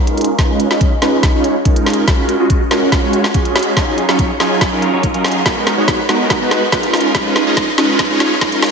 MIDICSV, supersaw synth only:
0, 0, Header, 1, 2, 480
1, 0, Start_track
1, 0, Tempo, 422535
1, 440, Time_signature, 4, 2, 24, 8
1, 9898, End_track
2, 0, Start_track
2, 0, Title_t, "Supersaw synth"
2, 0, Program_c, 0, 81
2, 0, Note_on_c, 0, 56, 81
2, 0, Note_on_c, 0, 61, 73
2, 0, Note_on_c, 0, 63, 73
2, 0, Note_on_c, 0, 65, 74
2, 0, Note_on_c, 0, 70, 89
2, 411, Note_off_c, 0, 61, 0
2, 412, Note_off_c, 0, 56, 0
2, 412, Note_off_c, 0, 63, 0
2, 412, Note_off_c, 0, 65, 0
2, 412, Note_off_c, 0, 70, 0
2, 439, Note_on_c, 0, 56, 78
2, 439, Note_on_c, 0, 61, 73
2, 439, Note_on_c, 0, 63, 71
2, 439, Note_on_c, 0, 65, 72
2, 439, Note_on_c, 0, 71, 90
2, 774, Note_off_c, 0, 56, 0
2, 774, Note_off_c, 0, 61, 0
2, 774, Note_off_c, 0, 63, 0
2, 774, Note_off_c, 0, 65, 0
2, 774, Note_off_c, 0, 71, 0
2, 803, Note_on_c, 0, 56, 98
2, 803, Note_on_c, 0, 61, 94
2, 803, Note_on_c, 0, 63, 86
2, 803, Note_on_c, 0, 65, 88
2, 803, Note_on_c, 0, 75, 105
2, 1047, Note_off_c, 0, 56, 0
2, 1047, Note_off_c, 0, 61, 0
2, 1047, Note_off_c, 0, 63, 0
2, 1047, Note_off_c, 0, 75, 0
2, 1048, Note_off_c, 0, 65, 0
2, 1158, Note_on_c, 0, 63, 81
2, 1158, Note_on_c, 0, 71, 94
2, 1159, Note_on_c, 0, 56, 90
2, 1159, Note_on_c, 0, 61, 85
2, 1159, Note_on_c, 0, 65, 81
2, 1493, Note_off_c, 0, 56, 0
2, 1493, Note_off_c, 0, 61, 0
2, 1493, Note_off_c, 0, 63, 0
2, 1493, Note_off_c, 0, 65, 0
2, 1493, Note_off_c, 0, 71, 0
2, 1522, Note_on_c, 0, 56, 99
2, 1522, Note_on_c, 0, 61, 92
2, 1522, Note_on_c, 0, 63, 91
2, 1522, Note_on_c, 0, 65, 89
2, 1522, Note_on_c, 0, 73, 108
2, 1767, Note_off_c, 0, 56, 0
2, 1767, Note_off_c, 0, 61, 0
2, 1767, Note_off_c, 0, 63, 0
2, 1767, Note_off_c, 0, 65, 0
2, 1767, Note_off_c, 0, 73, 0
2, 1878, Note_on_c, 0, 61, 75
2, 1878, Note_on_c, 0, 63, 77
2, 1878, Note_on_c, 0, 65, 73
2, 1878, Note_on_c, 0, 70, 92
2, 1879, Note_on_c, 0, 56, 78
2, 2331, Note_off_c, 0, 56, 0
2, 2331, Note_off_c, 0, 61, 0
2, 2331, Note_off_c, 0, 63, 0
2, 2331, Note_off_c, 0, 65, 0
2, 2331, Note_off_c, 0, 70, 0
2, 2358, Note_on_c, 0, 56, 82
2, 2358, Note_on_c, 0, 61, 72
2, 2358, Note_on_c, 0, 66, 74
2, 2358, Note_on_c, 0, 70, 90
2, 2359, Note_on_c, 0, 65, 73
2, 2693, Note_off_c, 0, 56, 0
2, 2693, Note_off_c, 0, 61, 0
2, 2693, Note_off_c, 0, 65, 0
2, 2693, Note_off_c, 0, 66, 0
2, 2693, Note_off_c, 0, 70, 0
2, 2723, Note_on_c, 0, 56, 100
2, 2723, Note_on_c, 0, 65, 91
2, 2723, Note_on_c, 0, 66, 93
2, 2723, Note_on_c, 0, 75, 104
2, 2724, Note_on_c, 0, 61, 90
2, 2968, Note_off_c, 0, 56, 0
2, 2968, Note_off_c, 0, 61, 0
2, 2968, Note_off_c, 0, 65, 0
2, 2968, Note_off_c, 0, 66, 0
2, 2968, Note_off_c, 0, 75, 0
2, 3079, Note_on_c, 0, 56, 90
2, 3079, Note_on_c, 0, 61, 83
2, 3079, Note_on_c, 0, 70, 101
2, 3080, Note_on_c, 0, 65, 84
2, 3080, Note_on_c, 0, 66, 79
2, 3414, Note_off_c, 0, 56, 0
2, 3414, Note_off_c, 0, 61, 0
2, 3414, Note_off_c, 0, 65, 0
2, 3414, Note_off_c, 0, 66, 0
2, 3414, Note_off_c, 0, 70, 0
2, 3444, Note_on_c, 0, 56, 97
2, 3444, Note_on_c, 0, 61, 92
2, 3444, Note_on_c, 0, 66, 93
2, 3444, Note_on_c, 0, 73, 110
2, 3445, Note_on_c, 0, 65, 89
2, 3688, Note_off_c, 0, 56, 0
2, 3688, Note_off_c, 0, 61, 0
2, 3688, Note_off_c, 0, 65, 0
2, 3688, Note_off_c, 0, 66, 0
2, 3688, Note_off_c, 0, 73, 0
2, 3800, Note_on_c, 0, 56, 82
2, 3800, Note_on_c, 0, 61, 73
2, 3800, Note_on_c, 0, 65, 76
2, 3800, Note_on_c, 0, 66, 71
2, 3800, Note_on_c, 0, 68, 90
2, 4252, Note_off_c, 0, 56, 0
2, 4252, Note_off_c, 0, 61, 0
2, 4252, Note_off_c, 0, 65, 0
2, 4252, Note_off_c, 0, 66, 0
2, 4252, Note_off_c, 0, 68, 0
2, 4280, Note_on_c, 0, 54, 81
2, 4280, Note_on_c, 0, 61, 73
2, 4281, Note_on_c, 0, 63, 73
2, 4281, Note_on_c, 0, 65, 74
2, 4281, Note_on_c, 0, 68, 86
2, 4614, Note_off_c, 0, 54, 0
2, 4614, Note_off_c, 0, 61, 0
2, 4614, Note_off_c, 0, 63, 0
2, 4614, Note_off_c, 0, 68, 0
2, 4615, Note_off_c, 0, 65, 0
2, 4645, Note_on_c, 0, 54, 98
2, 4645, Note_on_c, 0, 61, 90
2, 4645, Note_on_c, 0, 63, 88
2, 4645, Note_on_c, 0, 65, 93
2, 4645, Note_on_c, 0, 73, 106
2, 4888, Note_off_c, 0, 54, 0
2, 4888, Note_off_c, 0, 61, 0
2, 4888, Note_off_c, 0, 63, 0
2, 4888, Note_off_c, 0, 65, 0
2, 4888, Note_off_c, 0, 73, 0
2, 5000, Note_on_c, 0, 54, 86
2, 5000, Note_on_c, 0, 61, 81
2, 5000, Note_on_c, 0, 63, 79
2, 5000, Note_on_c, 0, 65, 82
2, 5000, Note_on_c, 0, 68, 100
2, 5334, Note_off_c, 0, 54, 0
2, 5334, Note_off_c, 0, 61, 0
2, 5334, Note_off_c, 0, 63, 0
2, 5334, Note_off_c, 0, 65, 0
2, 5334, Note_off_c, 0, 68, 0
2, 5364, Note_on_c, 0, 54, 103
2, 5364, Note_on_c, 0, 61, 91
2, 5364, Note_on_c, 0, 63, 92
2, 5364, Note_on_c, 0, 65, 89
2, 5364, Note_on_c, 0, 70, 109
2, 5579, Note_off_c, 0, 54, 0
2, 5579, Note_off_c, 0, 61, 0
2, 5579, Note_off_c, 0, 63, 0
2, 5579, Note_off_c, 0, 65, 0
2, 5579, Note_off_c, 0, 70, 0
2, 5604, Note_on_c, 0, 54, 77
2, 5604, Note_on_c, 0, 61, 70
2, 5604, Note_on_c, 0, 63, 71
2, 5604, Note_on_c, 0, 65, 71
2, 5604, Note_on_c, 0, 73, 87
2, 5814, Note_off_c, 0, 54, 0
2, 5814, Note_off_c, 0, 61, 0
2, 5814, Note_off_c, 0, 63, 0
2, 5814, Note_off_c, 0, 65, 0
2, 5814, Note_off_c, 0, 73, 0
2, 5843, Note_on_c, 0, 54, 82
2, 5843, Note_on_c, 0, 61, 72
2, 5843, Note_on_c, 0, 63, 70
2, 5843, Note_on_c, 0, 65, 75
2, 5843, Note_on_c, 0, 70, 89
2, 5942, Note_off_c, 0, 54, 0
2, 5942, Note_off_c, 0, 61, 0
2, 5942, Note_off_c, 0, 63, 0
2, 5942, Note_off_c, 0, 65, 0
2, 5942, Note_off_c, 0, 70, 0
2, 5960, Note_on_c, 0, 54, 81
2, 5960, Note_on_c, 0, 61, 71
2, 5960, Note_on_c, 0, 63, 72
2, 5960, Note_on_c, 0, 65, 72
2, 5960, Note_on_c, 0, 68, 90
2, 6172, Note_off_c, 0, 54, 0
2, 6172, Note_off_c, 0, 61, 0
2, 6172, Note_off_c, 0, 63, 0
2, 6172, Note_off_c, 0, 65, 0
2, 6172, Note_off_c, 0, 68, 0
2, 6199, Note_on_c, 0, 63, 73
2, 6200, Note_on_c, 0, 56, 83
2, 6200, Note_on_c, 0, 59, 74
2, 6200, Note_on_c, 0, 66, 74
2, 6200, Note_on_c, 0, 70, 89
2, 6534, Note_off_c, 0, 56, 0
2, 6534, Note_off_c, 0, 59, 0
2, 6534, Note_off_c, 0, 63, 0
2, 6534, Note_off_c, 0, 66, 0
2, 6534, Note_off_c, 0, 70, 0
2, 6563, Note_on_c, 0, 56, 99
2, 6563, Note_on_c, 0, 59, 87
2, 6563, Note_on_c, 0, 63, 94
2, 6563, Note_on_c, 0, 66, 87
2, 6563, Note_on_c, 0, 73, 108
2, 6807, Note_off_c, 0, 56, 0
2, 6807, Note_off_c, 0, 63, 0
2, 6807, Note_off_c, 0, 73, 0
2, 6808, Note_off_c, 0, 59, 0
2, 6808, Note_off_c, 0, 66, 0
2, 6919, Note_on_c, 0, 56, 91
2, 6919, Note_on_c, 0, 59, 82
2, 6919, Note_on_c, 0, 63, 81
2, 6919, Note_on_c, 0, 66, 82
2, 6919, Note_on_c, 0, 70, 102
2, 7254, Note_off_c, 0, 56, 0
2, 7254, Note_off_c, 0, 59, 0
2, 7254, Note_off_c, 0, 63, 0
2, 7254, Note_off_c, 0, 66, 0
2, 7254, Note_off_c, 0, 70, 0
2, 7283, Note_on_c, 0, 56, 94
2, 7283, Note_on_c, 0, 59, 93
2, 7283, Note_on_c, 0, 63, 91
2, 7283, Note_on_c, 0, 66, 91
2, 7283, Note_on_c, 0, 71, 104
2, 7527, Note_off_c, 0, 56, 0
2, 7527, Note_off_c, 0, 63, 0
2, 7527, Note_off_c, 0, 66, 0
2, 7527, Note_off_c, 0, 71, 0
2, 7528, Note_off_c, 0, 59, 0
2, 7639, Note_on_c, 0, 56, 83
2, 7639, Note_on_c, 0, 61, 75
2, 7640, Note_on_c, 0, 63, 75
2, 7640, Note_on_c, 0, 65, 74
2, 7640, Note_on_c, 0, 70, 88
2, 8092, Note_off_c, 0, 56, 0
2, 8092, Note_off_c, 0, 61, 0
2, 8092, Note_off_c, 0, 63, 0
2, 8092, Note_off_c, 0, 65, 0
2, 8092, Note_off_c, 0, 70, 0
2, 8119, Note_on_c, 0, 56, 81
2, 8119, Note_on_c, 0, 61, 75
2, 8119, Note_on_c, 0, 65, 76
2, 8119, Note_on_c, 0, 71, 90
2, 8120, Note_on_c, 0, 63, 72
2, 8454, Note_off_c, 0, 56, 0
2, 8454, Note_off_c, 0, 61, 0
2, 8454, Note_off_c, 0, 63, 0
2, 8454, Note_off_c, 0, 65, 0
2, 8454, Note_off_c, 0, 71, 0
2, 8483, Note_on_c, 0, 56, 101
2, 8483, Note_on_c, 0, 61, 92
2, 8483, Note_on_c, 0, 63, 91
2, 8483, Note_on_c, 0, 65, 90
2, 8483, Note_on_c, 0, 75, 107
2, 8727, Note_off_c, 0, 61, 0
2, 8727, Note_off_c, 0, 63, 0
2, 8727, Note_off_c, 0, 65, 0
2, 8728, Note_off_c, 0, 56, 0
2, 8728, Note_off_c, 0, 75, 0
2, 8839, Note_on_c, 0, 56, 90
2, 8839, Note_on_c, 0, 61, 79
2, 8839, Note_on_c, 0, 65, 83
2, 8839, Note_on_c, 0, 71, 101
2, 8840, Note_on_c, 0, 63, 86
2, 9174, Note_off_c, 0, 56, 0
2, 9174, Note_off_c, 0, 61, 0
2, 9174, Note_off_c, 0, 63, 0
2, 9174, Note_off_c, 0, 65, 0
2, 9174, Note_off_c, 0, 71, 0
2, 9204, Note_on_c, 0, 56, 99
2, 9204, Note_on_c, 0, 61, 90
2, 9204, Note_on_c, 0, 63, 92
2, 9204, Note_on_c, 0, 65, 94
2, 9204, Note_on_c, 0, 73, 111
2, 9448, Note_off_c, 0, 56, 0
2, 9448, Note_off_c, 0, 61, 0
2, 9448, Note_off_c, 0, 63, 0
2, 9448, Note_off_c, 0, 65, 0
2, 9448, Note_off_c, 0, 73, 0
2, 9559, Note_on_c, 0, 56, 83
2, 9559, Note_on_c, 0, 61, 76
2, 9559, Note_on_c, 0, 63, 75
2, 9559, Note_on_c, 0, 65, 75
2, 9559, Note_on_c, 0, 70, 90
2, 9898, Note_off_c, 0, 56, 0
2, 9898, Note_off_c, 0, 61, 0
2, 9898, Note_off_c, 0, 63, 0
2, 9898, Note_off_c, 0, 65, 0
2, 9898, Note_off_c, 0, 70, 0
2, 9898, End_track
0, 0, End_of_file